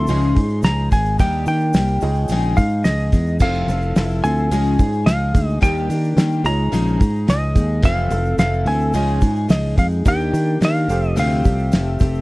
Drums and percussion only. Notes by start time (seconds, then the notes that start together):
0.07 open hi-hat, shaker
0.22 shaker
0.36 kick, open hi-hat
0.49 shaker
0.62 snare, open hi-hat, shaker
0.92 kick, open hi-hat, shaker
1.06 shaker
1.19 kick, open hi-hat, shaker
1.33 shaker
1.46 open hi-hat, shaker
1.60 shaker
1.73 snare, open hi-hat, shaker
1.88 shaker
2.01 open hi-hat, shaker
2.15 shaker
2.28 open hi-hat, shaker
2.43 shaker
2.57 kick, open hi-hat, shaker
2.70 shaker
2.85 snare, open hi-hat, shaker
3.00 shaker
3.12 kick, open hi-hat, shaker
3.27 shaker
3.40 kick, crash, shaker
3.54 shaker
3.68 open hi-hat, shaker
3.82 shaker
3.96 snare, open hi-hat, shaker
4.11 shaker
4.24 open hi-hat, shaker
4.38 shaker
4.51 open hi-hat, shaker
4.65 shaker
4.79 kick, open hi-hat, shaker
4.93 shaker
5.07 snare, open hi-hat, shaker
5.35 kick, open hi-hat, shaker
5.50 shaker
5.62 kick, open hi-hat, shaker
5.77 shaker
5.90 open hi-hat, shaker
6.04 shaker
6.18 snare, open hi-hat, shaker
6.32 shaker
6.45 open hi-hat, shaker
6.73 open hi-hat, shaker
6.87 shaker
7.01 kick, open hi-hat, shaker
7.16 shaker
7.28 snare, open hi-hat, shaker
7.56 kick, open hi-hat, shaker
7.83 kick, open hi-hat, shaker
7.97 shaker
8.10 open hi-hat, shaker
8.25 shaker
8.39 snare, open hi-hat, shaker
8.53 shaker
8.66 open hi-hat
8.80 shaker
8.93 open hi-hat, shaker
9.08 shaker
9.21 kick, open hi-hat, shaker
9.36 shaker
9.49 snare, open hi-hat, shaker
9.78 kick, open hi-hat, shaker
9.91 shaker
10.05 kick, open hi-hat, shaker
10.20 shaker
10.34 open hi-hat, shaker
10.62 snare, open hi-hat, shaker
10.76 shaker
10.89 open hi-hat, shaker
11.04 shaker
11.17 open hi-hat, shaker
11.31 shaker
11.45 kick, open hi-hat, shaker
11.59 shaker
11.72 snare, open hi-hat, shaker
11.99 kick, open hi-hat, shaker
12.15 shaker